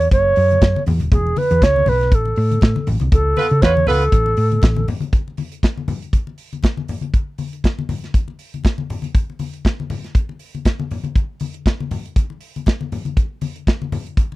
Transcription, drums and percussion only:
0.01 closed hi-hat
0.11 kick, closed hi-hat, muted conga
0.36 open hi-hat
0.51 closed hi-hat, high conga
0.61 kick, snare, closed hi-hat, muted conga
0.76 muted conga, high conga
0.86 open hi-hat, low conga
1.00 closed hi-hat, high conga
1.12 kick, closed hi-hat, muted conga, low conga
1.27 muted conga
1.36 open hi-hat, high conga
1.51 closed hi-hat
1.62 kick, snare, closed hi-hat
1.76 high conga
1.86 open hi-hat, high conga, low conga
2.01 snare, closed hi-hat
2.12 kick, closed hi-hat, muted conga
2.25 muted conga
2.36 open hi-hat
2.51 closed hi-hat, high conga
2.61 kick, snare, closed hi-hat, muted conga
2.76 muted conga, high conga
2.87 open hi-hat, low conga
3.00 closed hi-hat, high conga
3.12 kick, closed hi-hat, muted conga, low conga
3.36 open hi-hat, high conga
3.51 closed hi-hat
3.62 kick, snare, closed hi-hat
3.77 muted conga, high conga
3.87 open hi-hat, high conga, low conga
4.01 closed hi-hat
4.12 kick, closed hi-hat
4.26 muted conga
4.37 open hi-hat
4.52 closed hi-hat, high conga
4.62 kick, snare, closed hi-hat, muted conga
4.76 muted conga, high conga
4.88 open hi-hat, low conga
5.01 closed hi-hat, high conga
5.13 kick, closed hi-hat, muted conga
5.28 muted conga
5.37 open hi-hat, high conga
5.52 closed hi-hat
5.63 kick, snare, closed hi-hat, muted conga
5.77 muted conga, high conga
5.88 open hi-hat, high conga, low conga
6.02 closed hi-hat
6.13 kick, closed hi-hat, muted conga
6.27 muted conga
6.38 open hi-hat
6.53 closed hi-hat, high conga
6.63 kick, snare, closed hi-hat, muted conga
6.77 muted conga, high conga
6.88 open hi-hat, low conga
7.01 closed hi-hat, high conga
7.14 kick, closed hi-hat
7.38 open hi-hat, high conga
7.53 closed hi-hat
7.64 kick, snare, closed hi-hat, muted conga
7.79 muted conga, high conga
7.89 open hi-hat, high conga, low conga
8.04 snare, closed hi-hat
8.14 kick, closed hi-hat, muted conga
8.28 muted conga
8.39 open hi-hat
8.54 closed hi-hat, high conga
8.64 kick, snare, closed hi-hat, muted conga
8.78 muted conga, high conga
8.90 open hi-hat, low conga
9.02 closed hi-hat, high conga
9.15 kick, closed hi-hat, muted conga
9.30 muted conga
9.39 open hi-hat, high conga
9.53 closed hi-hat
9.65 kick, snare, closed hi-hat, muted conga
9.80 muted conga, high conga
9.90 open hi-hat, high conga, low conga
10.04 snare, closed hi-hat
10.15 kick, closed hi-hat, muted conga
10.29 muted conga
10.39 open hi-hat
10.54 closed hi-hat, high conga
10.65 kick, snare, closed hi-hat
10.80 muted conga, high conga
10.91 open hi-hat, low conga
11.04 closed hi-hat, high conga
11.15 kick, closed hi-hat, muted conga
11.40 open hi-hat, high conga
11.54 closed hi-hat
11.66 kick, snare, closed hi-hat, muted conga
11.80 high conga
11.91 open hi-hat, high conga, low conga
12.06 closed hi-hat
12.16 kick, closed hi-hat, muted conga
12.30 muted conga
12.41 open hi-hat
12.56 closed hi-hat, high conga
12.66 kick, snare, closed hi-hat, muted conga
12.81 high conga
12.92 open hi-hat, low conga
13.05 closed hi-hat, high conga
13.17 kick, closed hi-hat, muted conga
13.41 open hi-hat, high conga
13.56 closed hi-hat
13.67 kick, snare, closed hi-hat, muted conga
13.82 muted conga, high conga
13.92 open hi-hat, high conga, low conga
14.07 closed hi-hat
14.17 kick, closed hi-hat, muted conga
14.32 muted conga

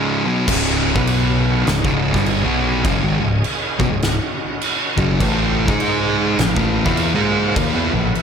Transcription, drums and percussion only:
0.48 kick, crash
0.96 kick
1.07 crash
1.67 snare, crash
1.85 kick
2.14 kick, snare
2.26 crash
2.85 kick, crash
3.44 crash
3.80 kick
4.02 snare, crash
4.61 crash
4.98 kick
5.20 kick, crash
5.68 kick
5.80 crash
6.39 snare, crash
6.57 kick
6.86 kick
6.97 crash
7.56 kick, crash
8.15 crash

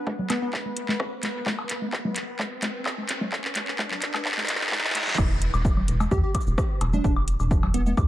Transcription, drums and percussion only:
0.07 kick, high conga
0.19 low conga
0.30 clap, closed hi-hat, cowbell, high conga
0.53 kick, clap
0.66 high conga
0.77 closed hi-hat
0.89 clap, high conga
1.00 kick, cross-stick
1.23 clap, closed hi-hat, high conga
1.46 kick, clap, high conga
1.59 cowbell
1.69 clap, closed hi-hat
1.82 high conga
1.93 kick, clap
2.05 high conga, low conga
2.16 clap, closed hi-hat
2.39 kick, clap, high conga
2.62 kick, clap, closed hi-hat, high conga
2.86 kick, clap, cowbell
2.98 high conga
3.09 clap, closed hi-hat
3.21 high conga, low conga
3.32 kick, clap
3.44 clap
3.55 clap, closed hi-hat, high conga
3.68 clap
3.79 kick, clap, high conga
3.91 clap, low conga
4.02 clap, closed hi-hat
4.14 clap, cowbell, high conga
4.25 kick, clap
4.31 clap
4.37 clap, high conga
4.43 clap
4.49 clap, closed hi-hat
4.55 clap
4.61 clap
4.66 clap
4.72 kick, clap, high conga
4.78 clap
4.84 clap
4.90 clap
4.95 clap, closed hi-hat, high conga
5.01 clap
5.07 clap, low conga
5.13 clap
5.18 kick, crash, cowbell, high woodblock, shaker
5.42 closed hi-hat, shaker
5.54 high woodblock, shaker
5.65 kick, shaker
5.77 low conga, high woodblock
5.88 closed hi-hat, shaker
6.00 cowbell, high conga, high woodblock, shaker
6.11 kick, shaker
6.35 kick, closed hi-hat, high woodblock, shaker
6.41 shaker
6.47 shaker
6.58 kick, cross-stick, high woodblock, shaker
6.81 closed hi-hat, cowbell, high woodblock, shaker
6.93 high conga, low conga, shaker
7.04 kick, shaker
7.16 high woodblock
7.28 closed hi-hat, shaker
7.40 high woodblock, shaker
7.51 kick, shaker
7.63 cowbell, low conga, high woodblock
7.74 closed hi-hat, shaker
7.86 high conga, shaker
7.97 kick, high woodblock, shaker

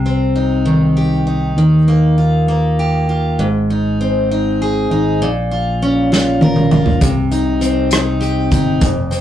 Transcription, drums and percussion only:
6.13 snare
6.41 high tom
6.56 mid tom
6.71 mid tom
6.86 floor tom
7.01 kick, closed hi-hat
7.32 closed hi-hat
7.62 closed hi-hat
7.91 cross-stick, closed hi-hat
8.22 closed hi-hat
8.51 kick, closed hi-hat
8.81 kick, closed hi-hat
9.12 closed hi-hat

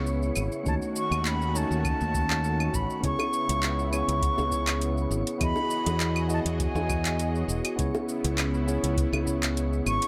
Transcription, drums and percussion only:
0.07 shaker
0.23 shaker
0.36 claves, shaker
0.52 shaker
0.66 kick, shaker
0.82 shaker
0.96 shaker
1.12 claves, shaker
1.25 clap, shaker
1.42 shaker
1.56 shaker
1.72 shaker
1.85 kick, claves, shaker
2.01 shaker
2.14 kick, shaker
2.30 clap, shaker
2.44 shaker
2.60 claves, shaker
2.74 kick, shaker
2.90 shaker
3.03 kick, closed hi-hat, shaker
3.19 high bongo, claves, shaker
3.33 shaker
3.49 closed hi-hat, shaker
3.63 clap, closed hi-hat, shaker
3.79 shaker
3.93 claves, shaker
4.09 closed hi-hat, shaker
4.22 kick, closed hi-hat, shaker
4.38 high bongo, shaker
4.52 kick, shaker
4.67 clap, closed hi-hat, claves, shaker
4.82 closed hi-hat, shaker
4.97 shaker
5.11 shaker
5.27 closed hi-hat, shaker
5.41 kick, closed hi-hat, claves, shaker
5.56 high bongo, shaker
5.70 shaker
5.86 closed hi-hat, high bongo, shaker
6.00 clap, closed hi-hat, shaker
6.16 claves, shaker
6.30 shaker
6.46 closed hi-hat, shaker
6.60 kick, closed hi-hat, shaker
6.76 high bongo, shaker
6.89 kick, claves, shaker
7.05 clap, closed hi-hat, shaker
7.19 closed hi-hat, shaker
7.35 shaker
7.49 shaker
7.65 closed hi-hat, claves, shaker
7.79 kick, closed hi-hat, shaker
7.95 high bongo, shaker
8.09 shaker
8.24 closed hi-hat, shaker
8.38 clap, closed hi-hat, claves, shaker
8.54 shaker
8.68 shaker
8.84 closed hi-hat, shaker
8.97 kick, closed hi-hat, shaker
9.13 high bongo, claves, shaker
9.27 kick, shaker
9.43 clap, closed hi-hat, shaker
9.57 closed hi-hat, shaker
9.73 shaker
9.86 claves, shaker
10.02 closed hi-hat, shaker

